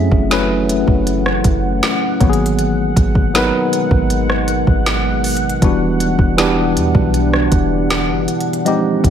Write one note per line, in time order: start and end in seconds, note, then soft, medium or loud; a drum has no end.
0.00 0.11 F#2 medium
0.00 2.18 E3 medium
0.00 0.30 F#3 medium
0.00 0.31 A3 medium
0.00 2.18 A3 medium
0.00 0.32 C#4 medium
0.00 2.18 C#4 medium
0.00 0.32 E4 medium
0.00 2.23 G#4 medium
0.00 2.54 E5 medium
0.00 8.62 F#5 medium
0.12 0.85 F#1 loud
0.12 kick medium
0.30 1.32 F#3 medium
0.30 1.32 A3 medium
0.30 1.33 C#4 medium
0.30 1.33 E4 medium
0.30 1.33 B4 loud
0.30 snare loud
0.30 closed hi-hat medium
0.69 closed hi-hat medium
0.88 1.42 F#1 loud
0.88 kick loud
1.07 closed hi-hat medium
1.26 cross-stick medium
1.44 1.81 F#1 loud
1.44 kick medium
1.44 closed hi-hat medium
1.83 snare loud
1.83 closed hi-hat medium
2.20 2.93 G#1 loud
2.20 8.62 B2 medium
2.20 5.59 D#3 medium
2.20 3.13 D#3 medium
2.20 3.11 F#3 medium
2.20 5.59 G#3 medium
2.20 3.12 A#3 medium
2.20 3.12 B3 medium
2.20 2.28 F#4 medium
2.20 kick loud
2.20 closed hi-hat medium
2.29 3.16 G#4 loud
2.29 closed hi-hat medium
2.46 closed hi-hat medium
2.59 closed hi-hat medium
2.96 3.51 G#1 loud
2.96 kick loud
2.96 closed hi-hat medium
3.15 kick medium
3.34 4.36 F#3 medium
3.34 4.36 B3 medium
3.34 4.37 D#4 medium
3.34 4.36 A#4 medium
3.34 4.37 B4 loud
3.34 snare loud
3.34 closed hi-hat medium
3.73 closed hi-hat medium
3.91 4.64 G#1 loud
3.91 kick loud
4.10 closed hi-hat medium
4.30 cross-stick medium
4.48 closed hi-hat medium
4.67 5.58 G#1 loud
4.67 kick medium
4.86 snare loud
4.86 closed hi-hat medium
5.24 closed hi-hat medium
5.24 open hi-hat medium
5.37 closed hi-hat medium
5.49 closed hi-hat medium
5.62 6.17 E1 loud
5.62 6.13 E3 medium
5.62 8.63 E3 medium
5.62 8.63 G3 medium
5.62 6.13 G3 medium
5.62 6.13 B3 medium
5.62 8.63 D4 medium
5.62 6.14 D4 medium
5.62 6.14 F#4 medium
5.62 kick loud
5.62 closed hi-hat medium
6.00 closed hi-hat medium
6.19 6.77 E1 loud
6.19 kick medium
6.37 7.39 E3 medium
6.37 7.40 G3 medium
6.37 7.40 B3 medium
6.37 7.40 D4 medium
6.37 7.40 G4 loud
6.37 snare loud
6.37 closed hi-hat medium
6.76 6.94 E2 loud
6.76 closed hi-hat medium
6.95 7.50 B1 loud
6.95 kick loud
7.14 closed hi-hat medium
7.33 cross-stick medium
7.52 8.10 E1 loud
7.52 kick medium
7.52 closed hi-hat medium
7.90 snare loud
7.90 closed hi-hat medium
8.09 8.27 F#1 loud
8.28 closed hi-hat medium
8.40 closed hi-hat medium
8.53 closed hi-hat medium
8.65 9.10 F3 medium
8.65 9.10 G#3 medium
8.65 9.10 C4 medium
8.65 9.10 D#4 medium
8.65 9.10 G4 loud
8.65 9.10 G4 medium
8.65 9.10 D#5 medium
8.65 closed hi-hat medium
9.04 9.10 F1 loud
9.04 kick loud
9.04 closed hi-hat medium